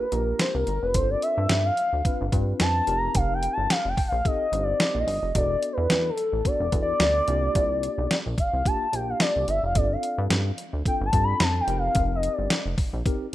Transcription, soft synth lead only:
0, 0, Header, 1, 2, 480
1, 0, Start_track
1, 0, Tempo, 550459
1, 827, Time_signature, 4, 2, 24, 8
1, 11639, End_track
2, 0, Start_track
2, 0, Title_t, "Soft synth lead"
2, 0, Program_c, 0, 80
2, 3, Note_on_c, 0, 71, 84
2, 108, Note_on_c, 0, 70, 87
2, 121, Note_off_c, 0, 71, 0
2, 347, Note_on_c, 0, 72, 87
2, 360, Note_off_c, 0, 70, 0
2, 472, Note_off_c, 0, 72, 0
2, 478, Note_on_c, 0, 70, 88
2, 721, Note_on_c, 0, 71, 94
2, 734, Note_off_c, 0, 70, 0
2, 827, Note_on_c, 0, 72, 96
2, 840, Note_off_c, 0, 71, 0
2, 955, Note_off_c, 0, 72, 0
2, 960, Note_on_c, 0, 74, 102
2, 1068, Note_on_c, 0, 76, 111
2, 1082, Note_off_c, 0, 74, 0
2, 1438, Note_off_c, 0, 76, 0
2, 1443, Note_on_c, 0, 77, 102
2, 1889, Note_off_c, 0, 77, 0
2, 2276, Note_on_c, 0, 81, 103
2, 2592, Note_on_c, 0, 82, 102
2, 2605, Note_off_c, 0, 81, 0
2, 2753, Note_on_c, 0, 77, 99
2, 2766, Note_off_c, 0, 82, 0
2, 2906, Note_off_c, 0, 77, 0
2, 2912, Note_on_c, 0, 79, 113
2, 3078, Note_on_c, 0, 81, 103
2, 3091, Note_off_c, 0, 79, 0
2, 3232, Note_on_c, 0, 77, 105
2, 3245, Note_off_c, 0, 81, 0
2, 3385, Note_off_c, 0, 77, 0
2, 3390, Note_on_c, 0, 79, 100
2, 3537, Note_off_c, 0, 79, 0
2, 3556, Note_on_c, 0, 77, 94
2, 3718, Note_on_c, 0, 75, 108
2, 3731, Note_off_c, 0, 77, 0
2, 4036, Note_on_c, 0, 74, 97
2, 4049, Note_off_c, 0, 75, 0
2, 4354, Note_on_c, 0, 75, 99
2, 4367, Note_off_c, 0, 74, 0
2, 4671, Note_off_c, 0, 75, 0
2, 4676, Note_on_c, 0, 74, 100
2, 4970, Note_off_c, 0, 74, 0
2, 4993, Note_on_c, 0, 71, 97
2, 5315, Note_on_c, 0, 69, 90
2, 5328, Note_off_c, 0, 71, 0
2, 5635, Note_on_c, 0, 74, 103
2, 5648, Note_off_c, 0, 69, 0
2, 5946, Note_off_c, 0, 74, 0
2, 5951, Note_on_c, 0, 74, 100
2, 7114, Note_off_c, 0, 74, 0
2, 7316, Note_on_c, 0, 77, 91
2, 7558, Note_on_c, 0, 81, 105
2, 7571, Note_off_c, 0, 77, 0
2, 7800, Note_on_c, 0, 79, 90
2, 7813, Note_off_c, 0, 81, 0
2, 7932, Note_on_c, 0, 77, 92
2, 7945, Note_off_c, 0, 79, 0
2, 8026, Note_off_c, 0, 77, 0
2, 8032, Note_on_c, 0, 74, 91
2, 8253, Note_off_c, 0, 74, 0
2, 8278, Note_on_c, 0, 76, 90
2, 8398, Note_off_c, 0, 76, 0
2, 8412, Note_on_c, 0, 77, 93
2, 8515, Note_on_c, 0, 74, 90
2, 8528, Note_off_c, 0, 77, 0
2, 8657, Note_on_c, 0, 77, 81
2, 8670, Note_off_c, 0, 74, 0
2, 8889, Note_off_c, 0, 77, 0
2, 9482, Note_on_c, 0, 79, 97
2, 9551, Note_off_c, 0, 79, 0
2, 9642, Note_on_c, 0, 81, 103
2, 9800, Note_on_c, 0, 83, 105
2, 9813, Note_off_c, 0, 81, 0
2, 9963, Note_on_c, 0, 81, 101
2, 9976, Note_off_c, 0, 83, 0
2, 10115, Note_off_c, 0, 81, 0
2, 10119, Note_on_c, 0, 79, 91
2, 10262, Note_off_c, 0, 79, 0
2, 10277, Note_on_c, 0, 77, 97
2, 10570, Note_off_c, 0, 77, 0
2, 10597, Note_on_c, 0, 75, 90
2, 10753, Note_on_c, 0, 74, 78
2, 10766, Note_off_c, 0, 75, 0
2, 10990, Note_off_c, 0, 74, 0
2, 11639, End_track
0, 0, End_of_file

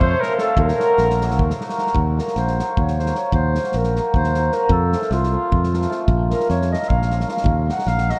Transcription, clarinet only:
0, 0, Header, 1, 2, 480
1, 0, Start_track
1, 0, Tempo, 393959
1, 690, Time_signature, 7, 3, 24, 8
1, 9979, End_track
2, 0, Start_track
2, 0, Title_t, "Clarinet"
2, 0, Program_c, 0, 71
2, 12, Note_on_c, 0, 72, 92
2, 280, Note_on_c, 0, 70, 81
2, 299, Note_off_c, 0, 72, 0
2, 472, Note_off_c, 0, 70, 0
2, 480, Note_on_c, 0, 69, 83
2, 676, Note_off_c, 0, 69, 0
2, 724, Note_on_c, 0, 70, 92
2, 1908, Note_off_c, 0, 70, 0
2, 2670, Note_on_c, 0, 70, 65
2, 2864, Note_off_c, 0, 70, 0
2, 2890, Note_on_c, 0, 72, 72
2, 3415, Note_on_c, 0, 73, 68
2, 3433, Note_off_c, 0, 72, 0
2, 3642, Note_on_c, 0, 72, 68
2, 3660, Note_off_c, 0, 73, 0
2, 3855, Note_on_c, 0, 73, 71
2, 3873, Note_off_c, 0, 72, 0
2, 4057, Note_off_c, 0, 73, 0
2, 4068, Note_on_c, 0, 72, 82
2, 4589, Note_on_c, 0, 70, 79
2, 4607, Note_off_c, 0, 72, 0
2, 5051, Note_off_c, 0, 70, 0
2, 5058, Note_on_c, 0, 72, 87
2, 5526, Note_on_c, 0, 70, 77
2, 5545, Note_off_c, 0, 72, 0
2, 5745, Note_on_c, 0, 69, 90
2, 5763, Note_off_c, 0, 70, 0
2, 6247, Note_on_c, 0, 65, 81
2, 6265, Note_off_c, 0, 69, 0
2, 7420, Note_off_c, 0, 65, 0
2, 7686, Note_on_c, 0, 70, 91
2, 7894, Note_off_c, 0, 70, 0
2, 7915, Note_on_c, 0, 73, 78
2, 8174, Note_off_c, 0, 73, 0
2, 8187, Note_on_c, 0, 75, 83
2, 8385, Note_on_c, 0, 77, 81
2, 8403, Note_off_c, 0, 75, 0
2, 8865, Note_off_c, 0, 77, 0
2, 9399, Note_on_c, 0, 78, 79
2, 9595, Note_on_c, 0, 77, 92
2, 9614, Note_off_c, 0, 78, 0
2, 9872, Note_on_c, 0, 75, 78
2, 9890, Note_off_c, 0, 77, 0
2, 9979, Note_off_c, 0, 75, 0
2, 9979, End_track
0, 0, End_of_file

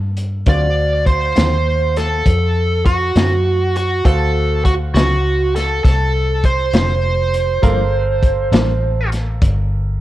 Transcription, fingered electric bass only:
0, 0, Header, 1, 2, 480
1, 0, Start_track
1, 0, Tempo, 596421
1, 381, Time_signature, 12, 3, 24, 8
1, 8055, End_track
2, 0, Start_track
2, 0, Title_t, "Fingered electric bass"
2, 0, Program_c, 0, 33
2, 0, Note_on_c, 0, 43, 79
2, 361, Note_off_c, 0, 43, 0
2, 377, Note_on_c, 0, 38, 83
2, 1078, Note_off_c, 0, 38, 0
2, 1106, Note_on_c, 0, 39, 89
2, 1803, Note_off_c, 0, 39, 0
2, 1823, Note_on_c, 0, 41, 78
2, 2521, Note_off_c, 0, 41, 0
2, 2540, Note_on_c, 0, 42, 81
2, 3239, Note_off_c, 0, 42, 0
2, 3263, Note_on_c, 0, 38, 88
2, 3961, Note_off_c, 0, 38, 0
2, 3976, Note_on_c, 0, 37, 83
2, 4678, Note_off_c, 0, 37, 0
2, 4705, Note_on_c, 0, 36, 74
2, 5403, Note_off_c, 0, 36, 0
2, 5419, Note_on_c, 0, 29, 89
2, 6120, Note_off_c, 0, 29, 0
2, 6138, Note_on_c, 0, 31, 84
2, 6840, Note_off_c, 0, 31, 0
2, 6855, Note_on_c, 0, 33, 83
2, 7558, Note_off_c, 0, 33, 0
2, 7583, Note_on_c, 0, 31, 79
2, 8055, Note_off_c, 0, 31, 0
2, 8055, End_track
0, 0, End_of_file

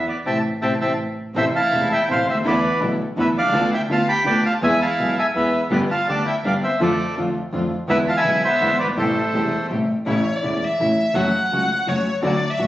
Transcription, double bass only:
0, 0, Header, 1, 2, 480
1, 0, Start_track
1, 0, Key_signature, 0, "minor"
1, 0, Tempo, 362757
1, 343, Time_signature, 3, 2, 24, 8
1, 16766, End_track
2, 0, Start_track
2, 0, Title_t, "Double bass"
2, 0, Program_c, 0, 43
2, 330, Note_on_c, 0, 33, 67
2, 516, Note_off_c, 0, 33, 0
2, 813, Note_on_c, 0, 33, 73
2, 999, Note_off_c, 0, 33, 0
2, 1051, Note_on_c, 0, 33, 70
2, 1240, Note_off_c, 0, 33, 0
2, 1793, Note_on_c, 0, 33, 72
2, 1998, Note_off_c, 0, 33, 0
2, 2267, Note_on_c, 0, 28, 59
2, 2476, Note_off_c, 0, 28, 0
2, 2761, Note_on_c, 0, 33, 58
2, 2964, Note_off_c, 0, 33, 0
2, 2998, Note_on_c, 0, 38, 54
2, 3237, Note_off_c, 0, 38, 0
2, 3245, Note_on_c, 0, 40, 77
2, 3447, Note_off_c, 0, 40, 0
2, 3723, Note_on_c, 0, 35, 63
2, 3926, Note_off_c, 0, 35, 0
2, 4196, Note_on_c, 0, 40, 67
2, 4401, Note_off_c, 0, 40, 0
2, 4439, Note_on_c, 0, 36, 56
2, 4663, Note_off_c, 0, 36, 0
2, 4671, Note_on_c, 0, 38, 81
2, 4878, Note_off_c, 0, 38, 0
2, 5143, Note_on_c, 0, 38, 65
2, 5353, Note_off_c, 0, 38, 0
2, 5634, Note_on_c, 0, 38, 63
2, 5838, Note_off_c, 0, 38, 0
2, 6118, Note_on_c, 0, 40, 77
2, 6321, Note_off_c, 0, 40, 0
2, 6599, Note_on_c, 0, 35, 61
2, 6801, Note_off_c, 0, 35, 0
2, 7083, Note_on_c, 0, 40, 61
2, 7285, Note_off_c, 0, 40, 0
2, 7557, Note_on_c, 0, 31, 82
2, 7763, Note_off_c, 0, 31, 0
2, 8043, Note_on_c, 0, 38, 62
2, 8248, Note_off_c, 0, 38, 0
2, 8523, Note_on_c, 0, 31, 66
2, 8727, Note_off_c, 0, 31, 0
2, 9006, Note_on_c, 0, 41, 82
2, 9208, Note_off_c, 0, 41, 0
2, 9474, Note_on_c, 0, 41, 61
2, 9681, Note_off_c, 0, 41, 0
2, 9953, Note_on_c, 0, 41, 69
2, 10158, Note_off_c, 0, 41, 0
2, 10429, Note_on_c, 0, 40, 82
2, 10635, Note_off_c, 0, 40, 0
2, 10902, Note_on_c, 0, 35, 62
2, 11110, Note_off_c, 0, 35, 0
2, 11388, Note_on_c, 0, 40, 64
2, 11593, Note_off_c, 0, 40, 0
2, 11620, Note_on_c, 0, 31, 57
2, 11862, Note_off_c, 0, 31, 0
2, 11870, Note_on_c, 0, 33, 83
2, 12073, Note_off_c, 0, 33, 0
2, 12351, Note_on_c, 0, 28, 59
2, 12554, Note_off_c, 0, 28, 0
2, 12839, Note_on_c, 0, 33, 61
2, 13041, Note_off_c, 0, 33, 0
2, 13330, Note_on_c, 0, 33, 78
2, 13526, Note_off_c, 0, 33, 0
2, 13806, Note_on_c, 0, 28, 58
2, 14004, Note_off_c, 0, 28, 0
2, 14277, Note_on_c, 0, 33, 58
2, 14480, Note_off_c, 0, 33, 0
2, 14750, Note_on_c, 0, 30, 76
2, 14955, Note_off_c, 0, 30, 0
2, 15242, Note_on_c, 0, 37, 60
2, 15439, Note_off_c, 0, 37, 0
2, 15718, Note_on_c, 0, 30, 58
2, 15914, Note_off_c, 0, 30, 0
2, 16188, Note_on_c, 0, 38, 78
2, 16388, Note_off_c, 0, 38, 0
2, 16663, Note_on_c, 0, 33, 61
2, 16766, Note_off_c, 0, 33, 0
2, 16766, End_track
0, 0, End_of_file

